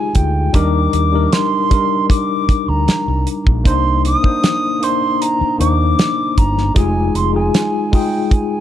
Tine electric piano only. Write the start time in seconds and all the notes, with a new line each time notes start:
Already playing: G#3 D#4 F4 G4 G#4
0.53 G3 D4 D#4 A#4
1.12 G3 D4 D#4 A#4
1.70 G3 D4 D#4 A#4
3.64 A#3 D4 D#4 C5
4.22 A#3 D4 D#4 C5
4.80 A#3 D4 D#4 C5
5.58 A#3 D4 D#4 C5
6.75 G#3 D#4 F4 G#4
7.33 G#3 D#4 F4 G#4
7.92 G#3 D#4 F4 G#4